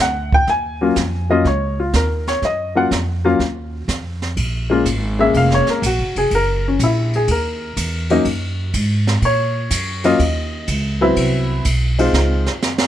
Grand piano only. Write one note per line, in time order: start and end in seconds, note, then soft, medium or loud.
0.01 0.33 F#5 medium
0.34 0.48 G5 loud
0.50 1.27 G#5 medium
0.81 0.95 F#3 medium
0.81 0.95 A#3 medium
0.81 0.95 C#4 medium
0.81 0.96 F4 medium
1.29 1.43 F#3 medium
1.29 1.44 A#3 medium
1.29 1.44 C#4 medium
1.29 1.44 F4 medium
1.29 1.45 D#5 medium
1.47 1.79 C#5 medium
1.80 1.94 F4 medium
1.96 2.27 A#4 medium
2.28 2.42 C#5 medium
2.45 2.76 D#5 medium
2.75 2.89 F#3 medium
2.75 2.89 A#3 medium
2.75 2.90 C#4 medium
2.75 2.90 F4 medium
2.75 2.86 F#5 medium
3.25 3.38 F#3 medium
3.25 3.38 A#3 medium
3.25 3.38 C#4 medium
3.25 3.39 F4 medium
4.70 4.84 G#3 medium
4.70 4.84 A#3 medium
4.70 4.84 C#4 medium
4.70 4.84 F4 medium
5.19 5.80 G#3 medium
5.19 5.80 A#3 medium
5.19 5.80 C#4 medium
5.19 5.80 G#4 medium
5.19 5.35 E5 medium
5.37 5.51 F5 medium
5.55 5.68 C#5 medium
5.70 5.84 A#4 medium
5.86 6.17 F#4 medium
6.18 6.32 G#4 medium
6.35 6.66 A#4 medium
6.68 6.81 C#4 medium
6.84 7.14 E4 medium
7.16 7.29 G#4 medium
7.31 8.71 A#4 medium
8.10 8.24 F#3 medium
8.10 8.24 A#3 medium
8.10 8.24 C#4 medium
8.10 8.25 D#4 medium
9.25 10.02 C#5 medium
10.04 10.18 F#3 medium
10.04 10.18 A#3 medium
10.04 10.18 C#4 medium
10.04 10.19 F4 medium
10.04 10.65 D#5 medium
11.01 11.62 F#3 medium
11.01 11.62 B3 medium
11.01 11.62 C4 medium
11.01 11.63 E4 medium
11.99 12.47 G#3 medium
11.99 12.48 C4 medium
11.99 12.48 D#4 medium
11.99 12.48 F4 medium